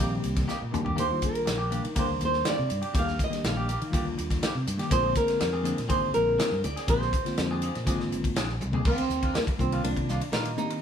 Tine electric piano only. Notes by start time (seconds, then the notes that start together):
0.00 D#3 G3 A#3 C4 G4
0.72 D#3 G3 A#3 D4 G4
1.10 D#3 G3 A#3 D4 F4
1.71 D#3 G3 A#3 D4 A#4
1.95 D#3 G3 A#3 D4 A#4
2.93 D#3 G3 A#3 D4 G4
3.30 D#3 G3 A#3 D4 G4
3.90 D#3 G3 A#3 D4 F4
4.77 D#3 G3 A#3 D4 G4
4.88 D3 G#3 A#3 C4 F4
5.01 D3 G#3 A#3 C4 G#4
5.62 D3 G#3 A#3 C4 D4
5.89 D3 G#3 A#3 C4 G#4
6.87 D3 G#3 A#3 C4 G4
7.24 D3 G#3 A#3 C4 F4
7.85 D3 G#3 A#3 C4 F4
8.72 D3 G#3 A#3 C4 G#4
9.58 D#3 A#3 C4 D4 F4
10.57 D#3 A#3 C4 D4 G4